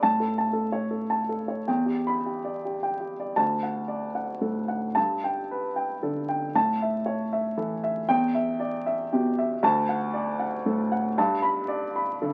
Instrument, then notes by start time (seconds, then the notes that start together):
upright piano
0.03 A2 A5
0.20 A4
0.38 A5
0.53 A4
0.72 C#5
0.91 A4
1.10 A5
1.29 A4
1.48 C#5
1.68 E2 G5
1.86 G4
2.07 B5
2.26 G4
2.45 D5
2.65 G4
2.83 G5
3.00 G4
3.20 D5
3.36 D2 A5
3.63 F#5
3.88 D5
4.15 F#5
4.41 A2 A4
4.68 F#5
4.95 G2 A5
5.24 G5
5.51 B4
5.76 G5
6.03 D3 A4
6.29 G5
6.55 A2 A5
6.82 E5
7.06 C#5
7.33 E5
7.57 E3 A4
7.84 E5
8.09 E2 G5
8.35 E5
8.60 D5
8.86 E5
9.13 B2 G4
9.39 E5
9.63 D2 A5
9.89 F#5
10.14 D5
10.39 F#5
10.66 A2 A4
10.92 F#5
11.18 G2 A5
11.42 B5
11.68 D5
11.96 B5
12.22 D3 A4